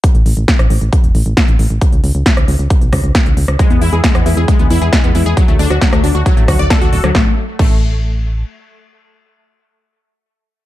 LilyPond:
<<
  \new Staff \with { instrumentName = "Synth pluck" } { \time 4/4 \key a \major \tempo 4 = 135 r1 | r1 | gis16 b16 e'16 gis'16 gis16 b16 e'16 gis'16 gis16 b16 e'16 gis'16 gis16 b16 e'16 gis'16 | fis16 a16 d'16 fis'16 fis16 a16 d'16 fis'16 fis16 a16 fis'16 d''16 a'16 fis'16 a'16 fis16 |
a16 r8. a16 r2 r8. | r1 | }
  \new Staff \with { instrumentName = "FM bass" } { \clef bass \time 4/4 \key a \major r16 a,,16 a,,16 a,,16 r16 a,,16 a,,16 a,,16 r16 e,,16 a,,16 a,,16 r16 a,,16 a,,16 a,,16 | r16 cis,16 cis,16 cis,16 r16 cis,16 cis,16 cis,16 r16 b,,16 cis,16 cis,16 r16 cis,16 cis,16 cis,16 | r16 e,16 e,16 e,16 r16 e,16 e,16 e,16 r16 d,16 e,16 e,16 r16 e,16 e,16 e,16 | r16 d,16 d,16 d,16 r16 d,16 d,16 d,16 r16 a,,16 d,16 d,16 r16 d,16 d,,16 d,16 |
a,,16 r8. a,,2 r4 | r1 | }
  \new DrumStaff \with { instrumentName = "Drums" } \drummode { \time 4/4 <hh bd>16 hh16 hho16 hh16 <hh bd sn>16 <hh ss>16 hho16 hh16 <hh bd>16 hh16 hho16 hh16 <hh bd sn>16 hh16 hho16 hh16 | <hh bd>16 hh16 hho16 hh16 <hh bd sn>16 <hh ss>16 hho16 hh16 <hh bd>16 hh16 <hho bd ss>16 hh16 <hh bd sn>16 hh16 hho16 <hh ss>16 | <hh bd>16 hh16 hho16 hh16 <hh bd sn>16 <hh ss>16 hho16 hh16 <hh bd>16 hh16 hho16 hh16 <hh bd sn>16 hh16 hho16 hh16 | <hh bd>16 hh16 hho16 <hh ss>16 <hh bd sn>16 <hh ss>16 hho16 hh16 <hh bd>16 hh16 <hho bd ss>16 hh16 <hh bd sn>16 hh16 hho16 <hh ss>16 |
<bd sn>4 <cymc bd>4 r4 r4 | r4 r4 r4 r4 | }
>>